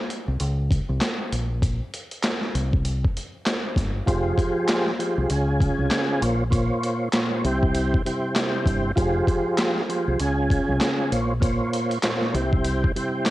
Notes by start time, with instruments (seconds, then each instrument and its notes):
0.10 closed hi-hat
0.28 fingered electric bass C2
0.40 fingered electric bass C#2, closed hi-hat
0.71 kick, closed hi-hat
0.89 fingered electric bass C2
1.01 snare, clap, closed hi-hat
1.32 fingered electric bass A#1, closed hi-hat
1.62 kick, closed hi-hat
1.94 closed hi-hat
2.11 closed hi-hat
2.23 snare, clap, closed hi-hat
2.42 snare
2.55 fingered electric bass C2, closed hi-hat
2.73 kick
2.85 closed hi-hat
3.04 kick
3.17 closed hi-hat
3.46 snare, clap, closed hi-hat
3.76 fingered electric bass G1, kick, snare, closed hi-hat
4.06 fingered electric bass F1, tonewheel organ F3 F4 G4 G#4 C5, kick, closed hi-hat
4.38 kick, closed hi-hat
4.68 snare, clap, closed hi-hat
4.87 snare
4.98 tonewheel organ F3 F4 G4 G#4 C5, closed hi-hat
5.18 fingered electric bass C2
5.30 fingered electric bass C#2, tonewheel organ C#3 C#4 F4 G#4 G#5, closed hi-hat
5.61 kick, closed hi-hat
5.79 fingered electric bass C2
5.91 snare, clap, closed hi-hat
6.21 fingered electric bass A#1, tonewheel organ A#2 A#3 F4 C5 C#5, closed hi-hat
6.50 tonewheel organ A#2 A#3 F4 C5 C#5, kick, closed hi-hat
6.84 closed hi-hat
7.13 tonewheel organ A#2 A#3 F4 C5 C#5, snare, clap, closed hi-hat
7.44 fingered electric bass C2, tonewheel organ C3 G3 E4 C5 G5, closed hi-hat
7.63 kick
7.75 closed hi-hat
7.94 kick
8.05 tonewheel organ C3 G3 E4 C5 G5, closed hi-hat
8.35 snare, clap, closed hi-hat
8.66 fingered electric bass G1, kick, closed hi-hat
8.96 fingered electric bass F1, tonewheel organ F3 F4 G4 G#4 C5, kick, closed hi-hat
9.27 kick, closed hi-hat
9.58 snare, clap, closed hi-hat
9.76 snare
9.88 tonewheel organ F3 F4 G4 G#4 C5, closed hi-hat
10.08 fingered electric bass C2
10.20 fingered electric bass C#2, tonewheel organ C#3 C#4 F4 G#4 G#5, closed hi-hat
10.50 kick, closed hi-hat
10.69 fingered electric bass C2
10.81 snare, clap, closed hi-hat
11.11 fingered electric bass A#1, tonewheel organ A#2 A#3 F4 C5 C#5, closed hi-hat
11.40 tonewheel organ A#2 A#3 F4 C5 C#5, kick, closed hi-hat
11.73 closed hi-hat
11.91 closed hi-hat
12.03 tonewheel organ A#2 A#3 F4 C5 C#5, snare, clap, closed hi-hat
12.21 snare
12.34 fingered electric bass C2, tonewheel organ C3 G3 E4 C5 G5, closed hi-hat
12.53 kick
12.64 closed hi-hat
12.84 kick
12.95 tonewheel organ C3 G3 E4 C5 G5, closed hi-hat
13.25 snare, clap, closed hi-hat